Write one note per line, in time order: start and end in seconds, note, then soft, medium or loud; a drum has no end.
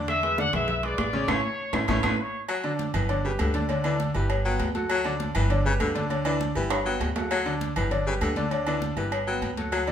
0.00 0.48 E2 medium
0.00 0.18 D3 medium
0.00 0.18 D4 medium
0.00 0.18 D5 loud
0.08 0.37 E5 loud
0.08 high bongo medium
0.08 high conga soft
0.08 high timbale medium
0.08 claves medium
0.23 0.35 G#3 medium
0.23 0.35 G#4 medium
0.23 0.36 B4 medium
0.23 high conga soft
0.23 high timbale medium
0.38 0.50 D3 medium
0.38 0.51 D4 medium
0.38 0.51 D5 medium
0.38 0.54 F#5 loud
0.38 high bongo medium
0.38 high conga medium
0.53 0.95 B1 loud
0.53 0.78 G#3 medium
0.53 0.78 G#4 medium
0.53 0.78 B4 medium
0.53 0.82 E5 medium
0.53 high conga soft
0.53 low conga medium
0.53 high timbale medium
0.53 claves medium
0.68 high bongo medium
0.68 high conga soft
0.68 low conga medium
0.83 1.08 G#3 medium
0.83 1.08 G#4 medium
0.83 1.08 B4 medium
0.83 1.29 D5 medium
0.83 high conga soft
0.83 high timbale medium
0.98 1.26 A1 medium
0.98 high bongo medium
0.98 low bongo medium
0.98 high conga medium
0.98 high timbale medium
0.98 low timbale medium
0.98 claves medium
1.13 1.26 C#3 medium
1.13 1.26 C#4 medium
1.13 1.26 C#5 medium
1.13 high conga medium
1.28 1.40 A1 loud
1.28 1.38 A3 loud
1.28 1.38 C#4 medium
1.28 1.38 E4 medium
1.28 1.74 C#5 loud
1.28 low bongo medium
1.28 high conga loud
1.28 high timbale loud
1.28 claves loud
1.73 1.85 A1 loud
1.73 1.83 A3 medium
1.73 1.83 C#4 medium
1.73 1.83 E4 medium
1.73 low bongo loud
1.73 high conga medium
1.73 high timbale loud
1.73 claves loud
1.88 2.00 A1 loud
1.88 1.98 A3 loud
1.88 1.98 C#4 loud
1.88 1.98 E4 loud
1.88 2.03 C#5 medium
1.88 low bongo loud
1.88 high conga loud
1.88 high timbale medium
1.88 claves medium
2.03 2.15 A1 medium
2.03 2.13 A3 loud
2.03 2.13 C#4 medium
2.03 2.13 E4 medium
2.03 2.19 B4 medium
2.03 low bongo medium
2.03 high conga medium
2.03 high timbale loud
2.03 claves loud
2.21 2.42 C#5 medium
2.49 2.73 F#3 medium
2.49 cowbell loud
2.49 high conga soft
2.49 low agogo loud
2.49 claves medium
2.64 2.89 D3 medium
2.64 2.89 D4 medium
2.64 2.89 D5 medium
2.64 high conga soft
2.64 low agogo medium
2.79 cowbell medium
2.79 high conga medium
2.94 3.36 G1 loud
2.94 3.10 E3 medium
2.94 3.07 G3 medium
2.94 3.07 G4 medium
2.94 3.07 B4 medium
2.94 cowbell medium
2.94 high conga soft
2.94 low conga medium
2.94 low agogo loud
2.94 claves medium
3.09 3.22 D3 medium
3.09 3.22 D4 medium
3.09 3.22 D5 medium
3.09 cowbell loud
3.09 high conga soft
3.09 low agogo medium
3.24 3.33 C#3 medium
3.24 3.49 G3 medium
3.24 3.49 G4 medium
3.24 3.50 B4 medium
3.24 high conga soft
3.39 4.09 D2 loud
3.39 3.63 D3 medium
3.39 cowbell medium
3.39 high conga medium
3.39 low timbale medium
3.39 low agogo loud
3.39 claves medium
3.54 3.67 D3 medium
3.54 3.67 D4 medium
3.54 3.67 D5 medium
3.54 cowbell medium
3.54 high conga medium
3.69 3.82 D3 medium
3.69 3.82 D4 medium
3.69 3.82 D5 medium
3.69 cowbell loud
3.69 high conga soft
3.69 low agogo medium
3.84 4.09 D3 medium
3.84 4.01 E3 medium
3.84 4.09 D4 medium
3.84 4.09 D5 medium
3.84 high conga soft
3.84 low agogo loud
3.84 claves medium
4.00 cowbell medium
4.00 high conga medium
4.14 4.57 G1 medium
4.14 4.31 E3 medium
4.14 4.39 G3 medium
4.14 4.40 G4 medium
4.14 4.40 B4 medium
4.14 high conga soft
4.14 low agogo medium
4.30 cowbell loud
4.30 high conga soft
4.30 low agogo loud
4.30 claves medium
4.45 4.69 F#3 medium
4.45 4.70 B3 medium
4.45 4.70 B4 medium
4.45 4.70 G5 medium
4.45 high conga soft
4.60 5.30 D2 medium
4.60 cowbell medium
4.60 high conga medium
4.60 low timbale medium
4.60 low agogo medium
4.75 4.99 F#3 medium
4.75 5.00 F#4 medium
4.75 5.00 A4 medium
4.75 cowbell medium
4.75 high conga medium
4.89 5.14 F#3 medium
4.89 cowbell medium
4.89 high conga soft
4.89 low agogo loud
4.89 claves medium
5.04 5.30 D3 medium
5.04 5.30 D4 medium
5.04 5.30 D5 loud
5.04 high conga soft
5.04 low agogo medium
5.20 cowbell medium
5.20 high conga medium
5.35 5.77 G1 loud
5.35 5.51 E3 medium
5.35 5.47 G3 medium
5.35 5.48 G4 medium
5.35 5.48 B4 medium
5.35 cowbell medium
5.35 high conga soft
5.35 low conga medium
5.35 low agogo loud
5.35 claves medium
5.50 5.62 D3 medium
5.50 5.62 D4 medium
5.50 5.63 D5 medium
5.50 cowbell loud
5.50 high conga soft
5.50 low agogo medium
5.65 5.73 C#3 medium
5.65 5.90 G3 medium
5.65 5.90 G4 medium
5.65 5.90 B4 medium
5.65 high conga soft
5.80 6.50 D2 medium
5.80 6.04 D3 medium
5.80 cowbell medium
5.80 high conga medium
5.80 low timbale medium
5.80 low agogo loud
5.80 claves medium
5.95 6.07 D3 medium
5.95 6.07 D4 medium
5.95 6.08 D5 medium
5.95 cowbell medium
5.95 high conga medium
6.10 6.22 D3 medium
6.10 6.23 D4 medium
6.10 6.23 D5 medium
6.10 cowbell loud
6.10 high conga soft
6.10 low agogo medium
6.25 6.50 D3 medium
6.25 6.41 E3 medium
6.25 6.50 D4 medium
6.25 6.50 D5 loud
6.25 high conga soft
6.25 low agogo loud
6.25 claves medium
6.41 cowbell medium
6.41 high conga medium
6.55 6.98 G1 medium
6.55 6.72 E3 medium
6.55 6.80 G3 medium
6.55 6.80 G4 medium
6.55 6.80 B4 medium
6.55 high conga soft
6.55 low agogo medium
6.70 cowbell loud
6.70 high conga soft
6.70 high timbale loud
6.70 low agogo loud
6.70 claves medium
6.85 7.09 F#3 medium
6.85 7.10 B3 medium
6.85 7.11 B4 medium
6.85 7.10 G5 medium
6.85 high conga soft
6.85 high timbale medium
7.01 7.71 D2 medium
7.01 cowbell medium
7.01 high conga medium
7.01 low timbale medium
7.01 low agogo medium
7.16 7.41 F#3 medium
7.16 7.41 F#4 medium
7.16 7.41 A4 medium
7.16 cowbell medium
7.16 high conga medium
7.16 low timbale loud
7.31 7.55 F#3 medium
7.31 cowbell loud
7.31 high conga soft
7.31 low agogo loud
7.31 claves medium
7.46 7.71 D3 medium
7.46 7.71 D4 medium
7.46 7.71 D5 medium
7.46 high conga soft
7.46 low agogo medium
7.61 cowbell medium
7.61 high conga loud
7.76 8.18 G1 medium
7.76 7.92 E3 medium
7.76 7.88 G3 medium
7.76 7.89 G4 medium
7.76 7.89 B4 medium
7.76 cowbell medium
7.76 high conga soft
7.76 low conga medium
7.76 low agogo loud
7.76 claves medium
7.91 8.04 D3 medium
7.91 8.04 D4 medium
7.91 8.04 D5 medium
7.91 cowbell loud
7.91 high conga soft
7.91 low agogo medium
8.06 8.15 C#3 medium
8.06 8.31 G3 medium
8.06 8.31 G4 medium
8.06 8.31 B4 medium
8.06 high conga soft
8.21 8.91 D2 medium
8.21 8.46 D3 medium
8.21 cowbell medium
8.21 high conga medium
8.21 low agogo loud
8.21 claves medium
8.36 8.49 D3 loud
8.36 8.49 D4 medium
8.36 8.49 D5 medium
8.36 cowbell medium
8.36 high conga medium
8.51 8.64 D3 medium
8.51 8.64 D4 medium
8.51 8.64 D5 medium
8.51 cowbell loud
8.51 high conga soft
8.51 low agogo medium
8.67 8.92 D3 medium
8.67 8.83 E3 medium
8.67 8.92 D4 medium
8.67 8.92 D5 loud
8.67 high conga soft
8.67 low agogo loud
8.67 claves medium
8.82 cowbell medium
8.82 high conga loud
8.97 9.39 G1 loud
8.97 9.12 E3 medium
8.97 9.22 G3 medium
8.97 9.22 G4 medium
8.97 9.22 B4 medium
8.97 high conga soft
8.97 low agogo loud
9.12 cowbell loud
9.12 high conga soft
9.12 low agogo loud
9.12 claves medium
9.27 9.51 F#3 medium
9.27 9.52 B3 medium
9.27 9.52 B4 medium
9.27 9.52 G5 medium
9.27 high conga soft
9.42 9.92 D2 medium
9.42 cowbell medium
9.42 high conga medium
9.42 low agogo medium
9.57 9.82 F#3 medium
9.57 9.82 F#4 medium
9.57 9.82 A4 medium
9.57 cowbell medium
9.57 high conga medium
9.72 9.92 F#3 loud
9.72 cowbell loud
9.72 high conga soft
9.72 low agogo loud
9.72 claves medium
9.87 9.92 D3 loud
9.87 9.92 D4 medium
9.87 9.92 D5 medium
9.87 high conga soft
9.87 low agogo medium